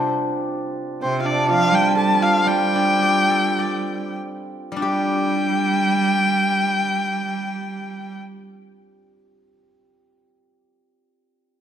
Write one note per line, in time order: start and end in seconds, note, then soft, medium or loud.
0.00 1.48 C3 soft
0.00 0.79 G3 soft
0.00 1.02 C4 medium
0.00 1.02 C4 soft
0.00 1.25 D4 medium
0.00 1.26 D4 soft
0.00 1.19 F4 soft
0.00 1.15 G4 medium
0.00 1.49 G4 soft
1.02 1.50 C3 medium
1.02 5.02 C4 medium
1.02 1.18 C5 medium
1.20 1.48 F4 soft
1.20 1.28 F5 medium
1.25 4.98 D4 medium
1.25 1.49 D5 medium
1.48 1.72 F3 medium
1.48 2.20 F4 medium
1.48 1.76 F5 medium
1.71 2.47 G3 medium
1.71 1.97 G5 medium
1.96 4.88 A4 medium
1.96 2.24 A5 medium
2.21 5.58 F4 medium
2.21 2.49 F5 medium
2.45 4.71 G3 medium
2.45 4.13 G3 medium
2.45 4.81 G4 medium
2.45 4.17 G5 medium
2.75 4.75 D4 soft
3.02 4.81 G4 soft
3.30 5.84 A4 soft
3.59 6.17 D5 soft
4.72 10.78 G3 soft
4.76 9.52 D4 soft
4.81 8.17 G3 medium
4.81 8.17 G4 medium
4.81 8.82 G4 soft
4.81 8.18 G5 medium